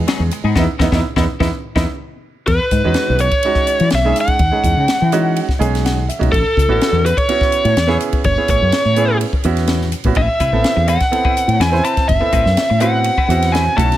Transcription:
Already playing: G#3 B3 D#4 G#4
0.08 F#3 B3 D#4 G#4, snare, ride
0.19 E2
0.31 muted clean electric guitar stroke, hi-hat pedal, ride
0.44 G#2 B3 D#4 G#4
0.55 E2 B3 D#4 E4, kick, snare
0.79 E2 B3 D#4 E4, kick, snare
0.92 E2 B3 D#4 E4, kick, snare
1.16 E2 B3 D#4 E4, kick, snare
1.40 E2 B3 D#4 E4, kick, snare
1.75 E2 B3 D#4 E4, kick, snare
2.47 E2 B4, kick, ride
2.71 G#2, kick, hi-hat pedal, ride
2.84 E2 G#3 C#4 D#4 F#4
2.94 snare, ride
3.09 B1
3.19 C#5, hi-hat pedal, ride
3.31 kick, ride
3.43 G#3 C#4 D#4 F#4, ride
3.55 kick, snare
3.67 hi-hat pedal, ride
3.80 E3, ride
3.90 B1, snare, ride
3.95 E5
4.05 G#3 C#4 D#4 G#4
4.16 snare, hi-hat pedal, ride
4.21 F#5
4.28 kick, ride
4.39 D#2, kick, ride
4.51 G#3 C#4 D#4 G#4
4.64 E2, kick, hi-hat pedal, ride
4.76 C#3
4.88 snare, ride
5.01 E3
5.12 G#3 C#4 D#4 F#4, hi-hat pedal, ride
5.36 ride
5.49 muted fretless electric bass stroke, kick, snare
5.59 B1 G#3 C#4 D#4 G#4, hi-hat pedal, ride
5.75 snare, ride
5.84 F#5, snare, ride
6.09 E5, hi-hat pedal, ride
6.19 B1 G#3 C#4 D#4 F#4, kick, ride
6.32 A1 A4, kick, ride
6.57 C#2, kick, hi-hat pedal, ride
6.68 A1 B3 C#4 E4 F#4
6.81 snare, ride
6.92 E2
7.06 B4, hi-hat pedal, ride
7.17 C#5, kick, ride
7.28 B3 C#4 E4 F#4, ride
7.41 kick, snare
7.52 hi-hat pedal, ride
7.65 A2, ride
7.76 E2, snare, ride
7.87 B3 C#4 E4 G#4, snare
8.00 hi-hat pedal, ride
8.13 kick, ride
8.24 F#1 C#5, kick, ride
8.37 B3 C#4 E4 G#4
8.48 A1 C#5, kick, hi-hat pedal, ride
8.62 F#2
8.72 snare, ride
8.85 A2
8.96 B3 C#4 E4 G#4, hi-hat pedal, ride
9.21 ride
9.33 muted fretless electric bass stroke, kick
9.44 E2 B3 C#4 E4 F#4, hi-hat pedal, ride
9.57 snare, ride
9.68 snare, ride
9.81 snare
9.92 hi-hat pedal, ride
10.04 A1 B3 C#4 E4 F#4, kick, ride
10.15 A1 C4 E4 B4 E5, kick, ride
10.40 C2 C4 E4 B4, kick, hi-hat pedal, ride
10.52 A1 B3 C4 E4 A4, muted clean electric guitar stroke
10.64 snare, ride
10.76 E2, muted clean electric guitar stroke
10.88 C4 E4 B4 F#5, hi-hat pedal, ride
11.00 muted clean electric guitar stroke, kick, snare, ride
11.11 B3 C4 E4 A4, muted clean electric guitar stroke, ride
11.25 C4 E4 B4, kick
11.36 muted clean electric guitar stroke, hi-hat pedal, ride
11.48 A2, ride
11.59 E2 C4 E4 B4 G#5, snare, ride
11.72 C4 E4 B4 C5, muted clean electric guitar stroke, snare
11.84 C4 E4 B4 A5, hi-hat pedal, ride
11.97 muted clean electric guitar stroke, kick, snare, ride
12.08 F#1 E5, kick, ride
12.20 B3 C4 E4 A4, muted clean electric guitar stroke
12.33 A1 C4 E4 B4, kick, hi-hat pedal, ride
12.45 F#2, muted clean electric guitar stroke, snare
12.57 snare, ride
12.70 A2, muted clean electric guitar stroke
12.80 B3 C4 E4 F#4 B4 F#5, hi-hat pedal, ride
12.93 muted clean electric guitar stroke
13.04 muted clean electric guitar stroke, ride
13.17 C4 E4 B4, muted fretless electric bass stroke, kick
13.28 E2 B3 C4 E4 F#4, hi-hat pedal, ride
13.42 snare, ride
13.52 C4 E4 B4 G#5, snare, ride
13.65 muted clean electric guitar stroke
13.76 B1 F#3 A3 C#4 E4 F#4 A4 A5, kick, hi-hat pedal, ride
13.90 muted clean electric guitar stroke, snare, ride

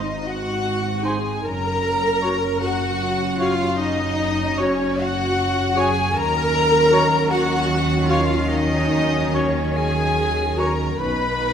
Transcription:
Already playing: G#1 G#2 C4 D#4 D#5
0.25 F#4 F#5
1.03 D#4 G#4 C5 G#5
1.44 F#1 F#2 F#3 C#4 A#4 A#5
2.22 F#4 C#5
2.62 F#4 F#5
3.40 F4 F#4 C#5 F5
3.78 D#4 D#5
4.58 C#4 F#4 C#5
4.99 F#4 F#5
5.77 F#4 G#4 C#5 G#5
6.16 D#2 D#3 F#3 C#4 A#4 A#5
6.92 F#4 C#5
7.31 F#4 F#5
8.09 F4 F#4 C#5 F5
8.48 D#4 D#5
9.34 C#4 F#4 C#5
9.77 G#4 G#5
10.57 F#4 A#4 C#5 A#5
10.61 A#5
10.97 B1 B2 B3 D#4 B4 B5

